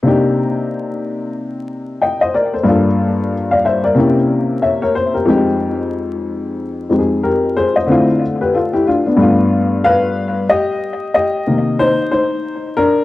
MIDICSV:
0, 0, Header, 1, 2, 480
1, 0, Start_track
1, 0, Tempo, 652174
1, 43, Time_signature, 4, 2, 24, 8
1, 9600, End_track
2, 0, Start_track
2, 0, Title_t, "Upright piano"
2, 0, Program_c, 0, 0
2, 19, Note_on_c, 0, 48, 65
2, 30, Note_on_c, 0, 58, 54
2, 40, Note_on_c, 0, 62, 55
2, 48, Note_on_c, 0, 63, 59
2, 60, Note_on_c, 0, 67, 72
2, 1483, Note_on_c, 0, 79, 56
2, 1487, Note_on_c, 0, 75, 45
2, 1617, Note_off_c, 0, 75, 0
2, 1618, Note_off_c, 0, 79, 0
2, 1628, Note_on_c, 0, 75, 62
2, 1630, Note_on_c, 0, 72, 47
2, 1720, Note_off_c, 0, 75, 0
2, 1721, Note_off_c, 0, 72, 0
2, 1724, Note_on_c, 0, 74, 58
2, 1728, Note_on_c, 0, 70, 50
2, 1859, Note_off_c, 0, 74, 0
2, 1861, Note_off_c, 0, 70, 0
2, 1867, Note_on_c, 0, 72, 46
2, 1870, Note_on_c, 0, 69, 41
2, 1922, Note_off_c, 0, 48, 0
2, 1927, Note_off_c, 0, 58, 0
2, 1932, Note_off_c, 0, 62, 0
2, 1936, Note_off_c, 0, 63, 0
2, 1939, Note_on_c, 0, 43, 66
2, 1942, Note_off_c, 0, 67, 0
2, 1951, Note_on_c, 0, 58, 57
2, 1961, Note_on_c, 0, 62, 55
2, 1970, Note_off_c, 0, 69, 0
2, 1971, Note_on_c, 0, 65, 63
2, 1981, Note_on_c, 0, 69, 68
2, 2094, Note_off_c, 0, 72, 0
2, 2443, Note_off_c, 0, 69, 0
2, 2584, Note_on_c, 0, 77, 57
2, 2589, Note_on_c, 0, 74, 45
2, 2677, Note_off_c, 0, 77, 0
2, 2680, Note_off_c, 0, 74, 0
2, 2686, Note_on_c, 0, 76, 57
2, 2691, Note_on_c, 0, 72, 52
2, 2820, Note_off_c, 0, 76, 0
2, 2822, Note_off_c, 0, 72, 0
2, 2825, Note_on_c, 0, 74, 57
2, 2831, Note_on_c, 0, 70, 50
2, 2892, Note_off_c, 0, 43, 0
2, 2898, Note_off_c, 0, 58, 0
2, 2903, Note_off_c, 0, 62, 0
2, 2904, Note_on_c, 0, 48, 64
2, 2908, Note_off_c, 0, 65, 0
2, 2914, Note_on_c, 0, 58, 64
2, 2923, Note_on_c, 0, 61, 57
2, 2933, Note_on_c, 0, 64, 59
2, 2942, Note_on_c, 0, 67, 64
2, 3053, Note_off_c, 0, 74, 0
2, 3056, Note_off_c, 0, 70, 0
2, 3401, Note_on_c, 0, 76, 55
2, 3403, Note_off_c, 0, 67, 0
2, 3406, Note_on_c, 0, 73, 46
2, 3537, Note_off_c, 0, 73, 0
2, 3537, Note_off_c, 0, 76, 0
2, 3548, Note_on_c, 0, 73, 63
2, 3551, Note_on_c, 0, 70, 56
2, 3639, Note_off_c, 0, 73, 0
2, 3641, Note_off_c, 0, 70, 0
2, 3644, Note_on_c, 0, 72, 65
2, 3779, Note_off_c, 0, 72, 0
2, 3783, Note_on_c, 0, 70, 48
2, 3787, Note_on_c, 0, 67, 45
2, 3854, Note_off_c, 0, 48, 0
2, 3859, Note_off_c, 0, 58, 0
2, 3864, Note_off_c, 0, 61, 0
2, 3865, Note_on_c, 0, 41, 68
2, 3869, Note_off_c, 0, 64, 0
2, 3875, Note_on_c, 0, 56, 58
2, 3885, Note_on_c, 0, 60, 59
2, 3890, Note_off_c, 0, 67, 0
2, 3894, Note_on_c, 0, 63, 64
2, 3902, Note_on_c, 0, 67, 77
2, 4012, Note_off_c, 0, 70, 0
2, 5050, Note_off_c, 0, 41, 0
2, 5055, Note_off_c, 0, 56, 0
2, 5060, Note_off_c, 0, 60, 0
2, 5064, Note_off_c, 0, 63, 0
2, 5068, Note_off_c, 0, 67, 0
2, 5074, Note_on_c, 0, 41, 46
2, 5079, Note_on_c, 0, 56, 41
2, 5083, Note_on_c, 0, 60, 43
2, 5087, Note_on_c, 0, 63, 42
2, 5094, Note_on_c, 0, 67, 41
2, 5140, Note_on_c, 0, 68, 53
2, 5145, Note_off_c, 0, 67, 0
2, 5323, Note_on_c, 0, 70, 59
2, 5328, Note_on_c, 0, 67, 48
2, 5352, Note_off_c, 0, 68, 0
2, 5551, Note_off_c, 0, 70, 0
2, 5553, Note_off_c, 0, 67, 0
2, 5568, Note_on_c, 0, 72, 69
2, 5574, Note_on_c, 0, 68, 55
2, 5701, Note_off_c, 0, 72, 0
2, 5704, Note_off_c, 0, 68, 0
2, 5710, Note_on_c, 0, 75, 53
2, 5714, Note_on_c, 0, 72, 45
2, 5788, Note_on_c, 0, 50, 67
2, 5795, Note_on_c, 0, 57, 57
2, 5796, Note_off_c, 0, 60, 0
2, 5798, Note_off_c, 0, 41, 0
2, 5801, Note_off_c, 0, 56, 0
2, 5805, Note_off_c, 0, 63, 0
2, 5807, Note_on_c, 0, 60, 63
2, 5816, Note_on_c, 0, 64, 63
2, 5826, Note_on_c, 0, 65, 75
2, 5936, Note_off_c, 0, 75, 0
2, 5938, Note_off_c, 0, 72, 0
2, 6040, Note_off_c, 0, 60, 0
2, 6045, Note_off_c, 0, 64, 0
2, 6050, Note_off_c, 0, 65, 0
2, 6190, Note_on_c, 0, 71, 56
2, 6194, Note_on_c, 0, 67, 52
2, 6280, Note_off_c, 0, 71, 0
2, 6283, Note_off_c, 0, 67, 0
2, 6289, Note_on_c, 0, 69, 58
2, 6292, Note_on_c, 0, 65, 55
2, 6422, Note_off_c, 0, 69, 0
2, 6423, Note_off_c, 0, 65, 0
2, 6427, Note_on_c, 0, 67, 66
2, 6433, Note_on_c, 0, 64, 56
2, 6519, Note_off_c, 0, 67, 0
2, 6522, Note_off_c, 0, 64, 0
2, 6531, Note_on_c, 0, 65, 63
2, 6535, Note_on_c, 0, 62, 47
2, 6659, Note_off_c, 0, 62, 0
2, 6662, Note_off_c, 0, 65, 0
2, 6670, Note_on_c, 0, 62, 51
2, 6674, Note_on_c, 0, 59, 45
2, 6736, Note_off_c, 0, 50, 0
2, 6740, Note_off_c, 0, 57, 0
2, 6746, Note_on_c, 0, 43, 67
2, 6756, Note_off_c, 0, 59, 0
2, 6758, Note_on_c, 0, 57, 63
2, 6765, Note_off_c, 0, 62, 0
2, 6767, Note_on_c, 0, 59, 56
2, 6776, Note_on_c, 0, 62, 59
2, 6786, Note_on_c, 0, 65, 72
2, 7245, Note_on_c, 0, 77, 88
2, 7251, Note_on_c, 0, 71, 74
2, 7695, Note_off_c, 0, 43, 0
2, 7698, Note_off_c, 0, 71, 0
2, 7701, Note_off_c, 0, 57, 0
2, 7706, Note_off_c, 0, 59, 0
2, 7711, Note_off_c, 0, 62, 0
2, 7715, Note_off_c, 0, 65, 0
2, 7724, Note_on_c, 0, 75, 90
2, 7731, Note_on_c, 0, 67, 76
2, 7739, Note_off_c, 0, 77, 0
2, 8178, Note_off_c, 0, 67, 0
2, 8191, Note_off_c, 0, 75, 0
2, 8202, Note_on_c, 0, 75, 83
2, 8211, Note_on_c, 0, 67, 72
2, 8440, Note_on_c, 0, 48, 51
2, 8443, Note_on_c, 0, 51, 41
2, 8450, Note_on_c, 0, 58, 60
2, 8657, Note_off_c, 0, 67, 0
2, 8680, Note_on_c, 0, 72, 84
2, 8687, Note_on_c, 0, 63, 68
2, 8697, Note_off_c, 0, 75, 0
2, 8778, Note_off_c, 0, 48, 0
2, 8779, Note_off_c, 0, 51, 0
2, 8783, Note_off_c, 0, 58, 0
2, 8905, Note_off_c, 0, 72, 0
2, 8908, Note_off_c, 0, 63, 0
2, 8916, Note_on_c, 0, 72, 74
2, 8926, Note_on_c, 0, 63, 58
2, 9375, Note_off_c, 0, 63, 0
2, 9396, Note_on_c, 0, 70, 89
2, 9408, Note_on_c, 0, 62, 67
2, 9414, Note_off_c, 0, 72, 0
2, 9600, Note_off_c, 0, 62, 0
2, 9600, Note_off_c, 0, 70, 0
2, 9600, End_track
0, 0, End_of_file